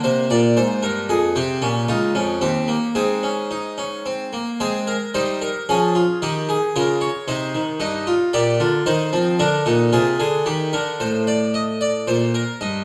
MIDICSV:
0, 0, Header, 1, 2, 480
1, 0, Start_track
1, 0, Key_signature, -4, "major"
1, 0, Tempo, 526778
1, 1236, Time_signature, 3, 2, 24, 8
1, 2200, Tempo, 545951
1, 5080, Tempo, 532387
1, 11527, End_track
2, 0, Start_track
2, 0, Title_t, "Harpsichord"
2, 0, Program_c, 0, 6
2, 0, Note_on_c, 0, 58, 69
2, 35, Note_on_c, 0, 72, 80
2, 40, Note_on_c, 0, 48, 71
2, 271, Note_off_c, 0, 72, 0
2, 274, Note_off_c, 0, 48, 0
2, 275, Note_on_c, 0, 46, 70
2, 278, Note_on_c, 0, 74, 76
2, 510, Note_off_c, 0, 46, 0
2, 512, Note_off_c, 0, 74, 0
2, 517, Note_on_c, 0, 44, 64
2, 519, Note_on_c, 0, 72, 76
2, 750, Note_off_c, 0, 44, 0
2, 751, Note_off_c, 0, 72, 0
2, 753, Note_on_c, 0, 70, 76
2, 755, Note_on_c, 0, 43, 76
2, 987, Note_off_c, 0, 70, 0
2, 988, Note_off_c, 0, 43, 0
2, 995, Note_on_c, 0, 41, 69
2, 996, Note_on_c, 0, 68, 63
2, 1201, Note_off_c, 0, 58, 0
2, 1228, Note_off_c, 0, 41, 0
2, 1228, Note_off_c, 0, 68, 0
2, 1236, Note_on_c, 0, 60, 90
2, 1239, Note_on_c, 0, 48, 78
2, 1239, Note_on_c, 0, 67, 76
2, 1468, Note_off_c, 0, 60, 0
2, 1469, Note_off_c, 0, 48, 0
2, 1474, Note_on_c, 0, 46, 73
2, 1475, Note_on_c, 0, 61, 87
2, 1535, Note_off_c, 0, 67, 0
2, 1707, Note_off_c, 0, 46, 0
2, 1707, Note_off_c, 0, 61, 0
2, 1717, Note_on_c, 0, 63, 85
2, 1717, Note_on_c, 0, 65, 73
2, 1718, Note_on_c, 0, 37, 74
2, 1951, Note_off_c, 0, 37, 0
2, 1951, Note_off_c, 0, 63, 0
2, 1960, Note_on_c, 0, 41, 59
2, 1960, Note_on_c, 0, 61, 73
2, 2017, Note_off_c, 0, 65, 0
2, 2195, Note_off_c, 0, 41, 0
2, 2195, Note_off_c, 0, 61, 0
2, 2199, Note_on_c, 0, 60, 83
2, 2201, Note_on_c, 0, 39, 75
2, 2202, Note_on_c, 0, 67, 69
2, 2430, Note_off_c, 0, 60, 0
2, 2433, Note_on_c, 0, 58, 72
2, 2497, Note_off_c, 0, 39, 0
2, 2497, Note_off_c, 0, 67, 0
2, 2668, Note_off_c, 0, 58, 0
2, 2673, Note_on_c, 0, 44, 78
2, 2673, Note_on_c, 0, 68, 66
2, 2674, Note_on_c, 0, 60, 73
2, 2910, Note_off_c, 0, 60, 0
2, 2918, Note_on_c, 0, 61, 59
2, 3153, Note_off_c, 0, 61, 0
2, 3162, Note_on_c, 0, 63, 67
2, 3395, Note_off_c, 0, 63, 0
2, 3400, Note_on_c, 0, 61, 59
2, 3636, Note_off_c, 0, 61, 0
2, 3644, Note_on_c, 0, 60, 71
2, 3849, Note_off_c, 0, 68, 0
2, 3850, Note_off_c, 0, 44, 0
2, 3880, Note_off_c, 0, 60, 0
2, 3883, Note_on_c, 0, 58, 50
2, 4118, Note_off_c, 0, 58, 0
2, 4124, Note_on_c, 0, 68, 88
2, 4125, Note_on_c, 0, 56, 70
2, 4125, Note_on_c, 0, 60, 82
2, 4358, Note_off_c, 0, 68, 0
2, 4362, Note_on_c, 0, 70, 80
2, 4422, Note_off_c, 0, 60, 0
2, 4423, Note_off_c, 0, 56, 0
2, 4596, Note_off_c, 0, 70, 0
2, 4600, Note_on_c, 0, 72, 91
2, 4601, Note_on_c, 0, 55, 72
2, 4601, Note_on_c, 0, 63, 72
2, 4834, Note_off_c, 0, 72, 0
2, 4839, Note_on_c, 0, 70, 78
2, 4896, Note_off_c, 0, 55, 0
2, 4896, Note_off_c, 0, 63, 0
2, 5070, Note_off_c, 0, 70, 0
2, 5081, Note_on_c, 0, 53, 67
2, 5081, Note_on_c, 0, 61, 65
2, 5081, Note_on_c, 0, 68, 80
2, 5315, Note_off_c, 0, 68, 0
2, 5316, Note_on_c, 0, 65, 79
2, 5380, Note_off_c, 0, 53, 0
2, 5380, Note_off_c, 0, 61, 0
2, 5553, Note_off_c, 0, 65, 0
2, 5560, Note_on_c, 0, 67, 92
2, 5561, Note_on_c, 0, 51, 71
2, 5561, Note_on_c, 0, 63, 71
2, 5795, Note_off_c, 0, 67, 0
2, 5801, Note_on_c, 0, 68, 77
2, 5857, Note_off_c, 0, 51, 0
2, 5857, Note_off_c, 0, 63, 0
2, 6032, Note_off_c, 0, 68, 0
2, 6042, Note_on_c, 0, 70, 85
2, 6043, Note_on_c, 0, 49, 83
2, 6044, Note_on_c, 0, 65, 79
2, 6271, Note_off_c, 0, 70, 0
2, 6271, Note_on_c, 0, 73, 88
2, 6336, Note_off_c, 0, 49, 0
2, 6337, Note_off_c, 0, 65, 0
2, 6504, Note_off_c, 0, 73, 0
2, 6511, Note_on_c, 0, 48, 75
2, 6511, Note_on_c, 0, 63, 76
2, 6513, Note_on_c, 0, 72, 86
2, 6742, Note_off_c, 0, 48, 0
2, 6753, Note_on_c, 0, 51, 71
2, 6805, Note_off_c, 0, 63, 0
2, 6806, Note_off_c, 0, 72, 0
2, 6980, Note_on_c, 0, 43, 89
2, 6981, Note_off_c, 0, 51, 0
2, 6982, Note_on_c, 0, 63, 97
2, 6984, Note_on_c, 0, 75, 81
2, 7214, Note_off_c, 0, 63, 0
2, 7227, Note_on_c, 0, 65, 97
2, 7276, Note_off_c, 0, 43, 0
2, 7279, Note_off_c, 0, 75, 0
2, 7456, Note_off_c, 0, 65, 0
2, 7464, Note_on_c, 0, 67, 96
2, 7465, Note_on_c, 0, 74, 78
2, 7467, Note_on_c, 0, 46, 87
2, 7696, Note_off_c, 0, 67, 0
2, 7697, Note_off_c, 0, 46, 0
2, 7704, Note_on_c, 0, 50, 71
2, 7705, Note_on_c, 0, 65, 85
2, 7762, Note_off_c, 0, 74, 0
2, 7936, Note_off_c, 0, 50, 0
2, 7937, Note_off_c, 0, 65, 0
2, 7940, Note_on_c, 0, 51, 84
2, 7940, Note_on_c, 0, 63, 98
2, 7940, Note_on_c, 0, 72, 77
2, 8174, Note_off_c, 0, 51, 0
2, 8174, Note_off_c, 0, 63, 0
2, 8180, Note_on_c, 0, 53, 66
2, 8181, Note_on_c, 0, 60, 88
2, 8238, Note_off_c, 0, 72, 0
2, 8413, Note_off_c, 0, 53, 0
2, 8414, Note_off_c, 0, 60, 0
2, 8419, Note_on_c, 0, 70, 93
2, 8421, Note_on_c, 0, 50, 93
2, 8421, Note_on_c, 0, 62, 110
2, 8654, Note_off_c, 0, 50, 0
2, 8654, Note_off_c, 0, 62, 0
2, 8658, Note_on_c, 0, 63, 92
2, 8659, Note_on_c, 0, 46, 80
2, 8717, Note_off_c, 0, 70, 0
2, 8893, Note_off_c, 0, 46, 0
2, 8893, Note_off_c, 0, 63, 0
2, 8899, Note_on_c, 0, 68, 84
2, 8900, Note_on_c, 0, 48, 79
2, 8900, Note_on_c, 0, 65, 101
2, 9131, Note_off_c, 0, 68, 0
2, 9133, Note_off_c, 0, 48, 0
2, 9133, Note_off_c, 0, 65, 0
2, 9142, Note_on_c, 0, 68, 92
2, 9144, Note_on_c, 0, 50, 70
2, 9374, Note_off_c, 0, 68, 0
2, 9375, Note_off_c, 0, 50, 0
2, 9380, Note_on_c, 0, 67, 91
2, 9381, Note_on_c, 0, 51, 78
2, 9615, Note_off_c, 0, 51, 0
2, 9615, Note_off_c, 0, 67, 0
2, 9624, Note_on_c, 0, 70, 67
2, 9625, Note_on_c, 0, 50, 64
2, 9860, Note_off_c, 0, 70, 0
2, 9861, Note_off_c, 0, 50, 0
2, 9870, Note_on_c, 0, 45, 62
2, 9870, Note_on_c, 0, 72, 68
2, 10107, Note_off_c, 0, 72, 0
2, 10113, Note_on_c, 0, 74, 59
2, 10349, Note_off_c, 0, 74, 0
2, 10356, Note_on_c, 0, 75, 71
2, 10589, Note_off_c, 0, 75, 0
2, 10597, Note_on_c, 0, 74, 65
2, 10809, Note_off_c, 0, 45, 0
2, 10830, Note_off_c, 0, 74, 0
2, 10837, Note_on_c, 0, 46, 63
2, 10837, Note_on_c, 0, 72, 72
2, 11070, Note_off_c, 0, 72, 0
2, 11080, Note_on_c, 0, 70, 64
2, 11136, Note_off_c, 0, 46, 0
2, 11313, Note_off_c, 0, 70, 0
2, 11319, Note_on_c, 0, 75, 59
2, 11320, Note_on_c, 0, 43, 76
2, 11527, Note_off_c, 0, 43, 0
2, 11527, Note_off_c, 0, 75, 0
2, 11527, End_track
0, 0, End_of_file